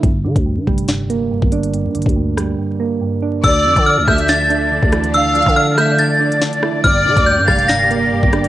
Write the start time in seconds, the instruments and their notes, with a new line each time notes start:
0.03 808-style bass G1, synth keys G2, kick, closed hi-hat
0.24 synth keys D3, 808-style bass D3
0.36 808-style bass D2, kick, closed hi-hat
0.46 synth keys G2
0.57 808-style bass G2
0.67 808-style bass F1, synth keys G3, kick
0.78 closed hi-hat
0.88 synth keys G2, snare, closed hi-hat
1.10 synth keys A#3, closed hi-hat
1.31 synth keys G2
1.42 808-style bass G1, kick
1.52 synth keys D4, closed hi-hat
1.63 closed hi-hat
1.73 synth keys G2, closed hi-hat
1.85 808-style bass G2
1.95 808-style bass G1, synth keys D3, closed hi-hat
2.02 closed hi-hat
2.06 808-style bass D2, kick, closed hi-hat
2.16 synth keys G2
2.37 synth keys G3, cross-stick, closed hi-hat
2.59 synth keys G2
2.80 synth keys A#3
3.01 synth keys G2
3.22 synth keys D4
3.44 808-style bass D2, string section D3 D4 D5, synth keys D3, violin section D5, synth bell E6, kick, closed hi-hat, crash
3.65 808-style bass F2, synth keys F3
3.76 808-style bass D3, kick, closed hi-hat
3.86 synth keys D3, synth bell F6
3.98 808-style bass C#2
4.08 808-style bass D2, synth keys A3, violin section E5, synth bell G6, kick, cross-stick
4.18 closed hi-hat
4.28 synth keys D3, synth bell A6, snare, closed hi-hat
4.50 synth keys D4, closed hi-hat
4.71 synth keys D3
4.83 808-style bass D2, kick
4.92 synth keys E3, cross-stick, closed hi-hat
5.04 closed hi-hat
5.14 synth keys D3, violin section F5, synth bell E6, closed hi-hat
5.35 synth keys F3, closed hi-hat
5.42 closed hi-hat
5.46 808-style bass D3, kick, closed hi-hat
5.56 synth keys D3, synth bell F6
5.78 synth keys A3, violin section E5, synth bell G6, cross-stick, closed hi-hat
5.98 synth keys D3, synth bell A6, closed hi-hat
6.20 synth keys D4
6.32 closed hi-hat
6.42 synth keys D3, snare
6.53 closed hi-hat
6.63 synth keys E4, cross-stick
6.84 808-style bass G1, synth keys G2, string section A#3 G4, violin section D5, synth bell F6, kick, closed hi-hat
7.05 synth keys D3, 808-style bass D3
7.17 808-style bass D2, kick, closed hi-hat
7.26 synth keys G2, synth bell G6
7.38 808-style bass G2
7.48 808-style bass F1, synth keys G3, violin section F5, synth bell A6, kick, cross-stick
7.59 closed hi-hat
7.68 synth keys G2, synth bell A#6, snare, closed hi-hat
7.90 synth keys A#3, closed hi-hat
8.12 synth keys G2
8.23 808-style bass G1, kick
8.33 synth keys D4, cross-stick, closed hi-hat
8.44 closed hi-hat